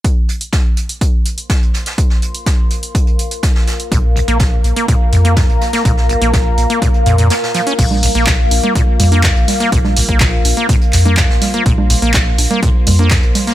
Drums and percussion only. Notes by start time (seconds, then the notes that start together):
0.05 kick, closed hi-hat
0.29 closed hi-hat
0.41 closed hi-hat
0.52 kick, snare, closed hi-hat
0.77 closed hi-hat
0.89 closed hi-hat
1.01 kick, closed hi-hat
1.26 closed hi-hat
1.38 closed hi-hat
1.49 kick, snare, closed hi-hat
1.62 closed hi-hat
1.74 snare, closed hi-hat
1.86 snare, closed hi-hat
1.98 kick, closed hi-hat
2.10 snare
2.22 closed hi-hat
2.34 closed hi-hat
2.46 kick, snare, closed hi-hat
2.71 closed hi-hat
2.83 closed hi-hat
2.95 kick, closed hi-hat
3.07 closed hi-hat
3.19 closed hi-hat
3.31 closed hi-hat
3.43 kick, snare, closed hi-hat
3.56 snare
3.67 snare, closed hi-hat
3.80 closed hi-hat
3.92 kick, closed hi-hat
4.16 closed hi-hat
4.28 closed hi-hat
4.39 kick, snare, closed hi-hat
4.64 closed hi-hat
4.76 closed hi-hat
4.88 kick, closed hi-hat
5.12 closed hi-hat
5.25 closed hi-hat
5.36 kick, snare, closed hi-hat
5.49 closed hi-hat
5.61 snare, closed hi-hat
5.73 snare, closed hi-hat
5.85 kick, closed hi-hat
5.97 snare
6.09 closed hi-hat
6.22 closed hi-hat
6.34 kick, snare, closed hi-hat
6.58 closed hi-hat
6.70 closed hi-hat
6.82 kick, closed hi-hat
6.94 closed hi-hat
7.06 closed hi-hat
7.18 closed hi-hat
7.30 snare, closed hi-hat
7.43 snare
7.54 snare, closed hi-hat
7.67 closed hi-hat
7.79 kick, closed hi-hat, crash
7.91 high conga, low conga
8.03 closed hi-hat, open hi-hat
8.15 closed hi-hat
8.27 kick, snare, clap, closed hi-hat
8.51 closed hi-hat, open hi-hat, high conga
8.63 closed hi-hat, low conga
8.75 kick, closed hi-hat
9.00 closed hi-hat, open hi-hat, low conga
9.12 closed hi-hat, high conga
9.23 kick, snare, clap, closed hi-hat
9.36 closed hi-hat
9.48 snare, closed hi-hat, open hi-hat, low conga
9.60 snare, closed hi-hat
9.72 kick, closed hi-hat
9.84 snare, high conga, low conga
9.96 closed hi-hat, open hi-hat
10.09 kick, closed hi-hat
10.20 kick, snare, clap, closed hi-hat
10.45 closed hi-hat, open hi-hat, high conga
10.57 closed hi-hat
10.69 kick, closed hi-hat
10.81 closed hi-hat
10.93 clap, closed hi-hat, open hi-hat
11.05 closed hi-hat, high conga, low conga
11.17 kick, snare, clap, closed hi-hat
11.30 snare
11.42 snare, closed hi-hat, open hi-hat, low conga
11.54 closed hi-hat
11.66 kick, closed hi-hat
11.78 high conga, low conga
11.90 closed hi-hat, open hi-hat
12.02 closed hi-hat
12.14 kick, snare, clap, closed hi-hat
12.38 closed hi-hat, open hi-hat, high conga
12.51 closed hi-hat, low conga
12.62 kick, closed hi-hat
12.87 closed hi-hat, open hi-hat, low conga
12.99 closed hi-hat, high conga
13.11 kick, snare, clap, closed hi-hat
13.23 closed hi-hat
13.35 snare, closed hi-hat, open hi-hat, low conga
13.47 snare, closed hi-hat